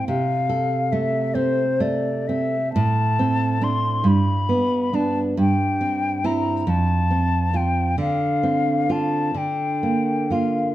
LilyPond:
<<
  \new Staff \with { instrumentName = "Flute" } { \time 6/8 \key a \minor \tempo 4. = 46 f''4 e''8 c''8 d''8 e''8 | a''4 c'''8 b''4 a''8 | g''4 bes''8 a''4 g''8 | f''4 a''8 g''4 f''8 | }
  \new Staff \with { instrumentName = "Nylon-string guitar" } { \time 6/8 \key a \minor c8 a'8 a8 c'8 a8 c'8 | a,8 c'8 <c' d'>8 g,8 b8 <b d'>8 | g,8 c'8 <c' e'>8 f,8 c'8 <c' f'>8 | d8 c'8 <c' f'>8 d8 bes8 <bes f'>8 | }
>>